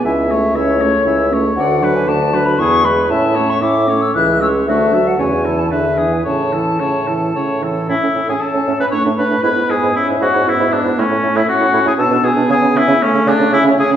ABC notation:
X:1
M:3/4
L:1/16
Q:1/4=117
K:A
V:1 name="Flute"
g2 e2 c6 z2 | f3 g a3 b c'2 b2 | a3 c' d'3 e' f'2 e'2 | e3 f g3 a e3 g |
a8- a2 z2 | e3 g a3 b c'2 b2 | b2 g2 e2 f2 e2 d2 | c3 e f3 g a2 g2 |
g2 e2 c2 d2 e2 g2 |]
V:2 name="Oboe"
e2 c2 e2 c2 e2 c2 | d2 B2 d2 B2 G2 B2 | e2 c2 e2 c2 e2 c2 | F2 A2 c2 A2 B2 G2 |
c2 A2 c2 A2 c2 A2 | E3 G A3 B c2 B2 | B2 G2 E2 F2 E2 D2 | C3 E F3 G A2 G2 |
G2 E2 C2 D2 E2 G2 |]
V:3 name="Clarinet"
E2 C2 E2 C2 E2 C2 | F2 D2 F2 D2 E2 G2 | E2 C2 E2 C2 E2 C2 | D2 F2 C2 E2 D2 E2 |
C2 E2 C2 E2 C2 E2 | C C C C z C C C D D D D | E E E E z E E E E E E E | E E E E z E E E D D D D |
C C C C z C C C C C C C |]
V:4 name="French horn"
C2 A,2 C2 A,2 C2 A,2 | D,2 F,2 D,2 F,2 B,2 G,2 | C2 A,2 C2 A,2 E,2 G,2 | A,2 F,2 C,2 E,2 D,2 E,2 |
C,2 E,2 C,2 E,2 C,2 E,2 | z4 C4 A,4 | B,4 C4 B,4 | A,4 C4 B,4- |
B,4 A,4 C4 |]
V:5 name="Bassoon" clef=bass
C,,4 C,,4 C,,4 | D,,4 D,,4 E,,4 | A,,4 A,,4 C,,4 | D,,4 E,,4 E,,4 |
A,,4 A,,4 A,,4 | A,, A,, A,, A,, z A,, A,, A,, A,, A,, A,, A,, | G,, G,, G,, G,, z G,, G,, G,, G,, G,, G,, G,, | A,, A,, A,, A,, z A,, A,, A,, B,, B,, B,, B,, |
C, C, C, C, z C, C, C, C, C, C, C, |]